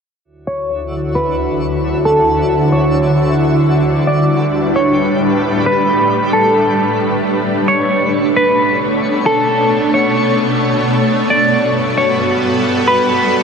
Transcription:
0.25 ambient pad D2 D3 E4 F#4, synth texture D4 F#4 C#5 E5
0.47 clean electric guitar C#5
1.15 clean electric guitar B4
2.05 clean electric guitar A4
2.72 clean electric guitar C#5
3.85 ambient pad A2 G3 D4 B4, synth texture A3 D4 G4 B4
4.07 clean electric guitar D5
4.76 clean electric guitar C#5
5.66 clean electric guitar B4
6.33 clean electric guitar A4
7.46 ambient pad B2 A3 C#5, synth texture D4 C#5
7.68 clean electric guitar C#5
8.36 clean electric guitar B4
9.26 clean electric guitar A4, synth texture A4
9.94 clean electric guitar C#5
11.07 ambient pad G2 B3 F#4 A4, synth texture G3 F#4 B4
11.30 clean electric guitar D5
11.98 clean electric guitar C#5
12.88 clean electric guitar B4

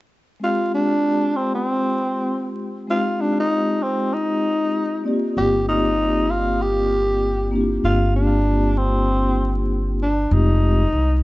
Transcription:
0.40 vibraphone G#3 C4 F4, tenor saxophone F4
0.44 vibraphone G4
0.75 tenor saxophone D4
1.36 tenor saxophone C4
1.55 tenor saxophone C4
2.87 vibraphone G#3 C4 D#4 F4, tenor saxophone F4
2.92 vibraphone G4
3.21 tenor saxophone D4
3.40 tenor saxophone D#4
3.82 tenor saxophone C4
4.13 tenor saxophone D#4
5.04 vibraphone A#3 C4 D#4 G4 D5
5.13 vibraphone F4
5.37 upright bass G1, tenor saxophone G4
5.69 tenor saxophone D#4
6.30 tenor saxophone F4
6.61 tenor saxophone G4
7.52 vibraphone A#3 C4 D4 E4 G4
7.61 vibraphone F4
7.84 upright bass G1, tenor saxophone F4
8.16 tenor saxophone D4
8.77 tenor saxophone C4
10.02 tenor saxophone D4
10.31 upright bass F1, vibraphone G#3 C4 D#4 F4 G4, tenor saxophone D#4
10.93 upright bass C2

